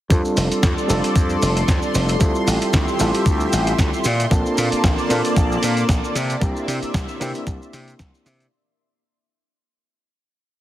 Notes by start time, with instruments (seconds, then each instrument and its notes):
0.10 slap bass F2, reed electric piano G3 C4 D4 F4 A4, analog synth pad A4 D5 C6, kick, closed hi-hat, maracas
0.25 maracas
0.37 slap bass F1, open hi-hat, maracas
0.51 muted slap bass stroke, closed hi-hat, maracas
0.63 slap bass F2, kick, snare, closed hi-hat, maracas
0.78 maracas
0.88 slap bass F1, reed electric piano G3 C4 D4 F4 A4, open hi-hat, maracas
1.04 closed hi-hat, maracas
1.16 slap bass F2, kick, closed hi-hat, maracas
1.30 maracas
1.42 slap bass F1, open hi-hat, maracas
1.57 closed hi-hat, maracas
1.68 slap bass F2, kick, snare, closed hi-hat, maracas
1.82 maracas
1.95 slap bass F1, open hi-hat, maracas
2.08 closed hi-hat, maracas
2.19 slap bass D2, reed electric piano G3 C4 E4 F4 A4, analog synth pad G4 E5, kick, closed hi-hat, maracas
2.35 maracas
2.47 slap bass A1, open hi-hat, maracas
2.61 muted slap bass stroke, closed hi-hat, maracas
2.73 slap bass D2, kick, snare, closed hi-hat, maracas
2.88 maracas
2.99 slap bass A1, reed electric piano G3 C4 E4 F4 A4, open hi-hat, maracas
3.14 closed hi-hat, maracas
3.26 slap bass D2, kick, closed hi-hat, maracas
3.40 maracas
3.53 slap bass A1, open hi-hat, maracas
3.67 closed hi-hat, maracas
3.79 slap bass D2, kick, snare, closed hi-hat, maracas
3.94 maracas
4.04 slap bass A#2, analog synth pad A#3 D5 A5, open hi-hat, maracas
4.20 closed hi-hat, maracas
4.31 slap bass A#1, reed electric piano A#3 C4 D4 F4 A4, kick, closed hi-hat, maracas
4.46 maracas
4.58 slap bass A#2, open hi-hat, maracas
4.72 muted slap bass stroke, closed hi-hat, maracas
4.84 slap bass A#1, kick, snare, closed hi-hat, maracas
4.98 maracas
5.09 slap bass A#2, reed electric piano A#3 C4 D4 F4 A4, open hi-hat, maracas
5.25 closed hi-hat, maracas
5.36 slap bass A#1, kick, closed hi-hat, maracas
5.52 maracas
5.63 slap bass A#2, open hi-hat, maracas
5.77 closed hi-hat, maracas
5.89 slap bass A#1, kick, snare, closed hi-hat, maracas
6.04 maracas
6.15 slap bass C3, analog synth pad E5, open hi-hat, maracas
6.30 closed hi-hat, maracas
6.41 slap bass C2, reed electric piano A#3 C4 D4 E4 G4, kick, closed hi-hat, maracas
6.56 maracas
6.68 slap bass C3, open hi-hat, maracas
6.82 muted slap bass stroke, closed hi-hat, maracas
6.94 slap bass C2, kick, snare, closed hi-hat, maracas
7.08 maracas
7.20 slap bass C3, reed electric piano A#3 C4 D4 E4 G4, open hi-hat, maracas
7.35 closed hi-hat, maracas
7.47 slap bass C2, kick, closed hi-hat, maracas
7.62 maracas
7.73 slap bass C3, open hi-hat, maracas
7.88 closed hi-hat, maracas
7.99 slap bass C2, kick, snare, closed hi-hat, maracas
8.15 maracas
8.26 slap bass C3, open hi-hat, maracas
8.40 closed hi-hat, maracas